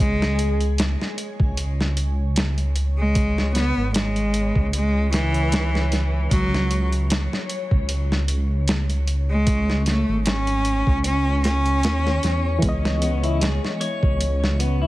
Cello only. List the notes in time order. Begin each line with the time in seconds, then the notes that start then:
0.00 G#3
2.98 G#3
3.55 B3
3.95 G#3
4.74 G#3
5.13 E3
6.31 F#3
9.30 G#3
9.87 A3
10.27 C#4
11.06 C#4
11.45 C#4